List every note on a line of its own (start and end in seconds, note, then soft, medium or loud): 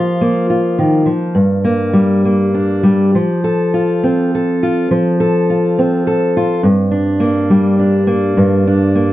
0.00 1.05 F3 medium
0.00 0.21 A#3 medium
0.00 0.49 F4 medium
0.21 1.63 A#3 medium
0.50 1.33 F4 medium
0.79 1.07 D#3 medium
1.06 1.35 F3 medium
1.35 3.13 G2 medium
1.64 2.24 A#3 medium
1.93 2.82 G3 medium
2.25 3.15 A#3 soft
2.54 3.14 D4 medium
2.83 3.10 G3 medium
3.15 4.89 F3 medium
3.44 4.34 A4 medium
3.74 4.62 F4 medium
4.03 4.88 C4 soft
4.35 5.20 A4 medium
4.63 4.88 F4 medium
4.91 6.63 F3 medium
5.20 6.07 A4 medium
5.50 6.35 F4 medium
5.78 6.60 C4 medium
6.07 6.66 A4 medium
6.37 6.61 F4 medium
6.63 8.36 G2 medium
6.91 7.78 D4 medium
7.20 8.07 A#3 medium
7.50 9.13 G3 medium
7.79 8.66 D4 soft
8.07 8.95 A#3 medium
8.37 9.13 G2 medium
8.67 9.13 D4 medium
8.95 9.13 A#3 medium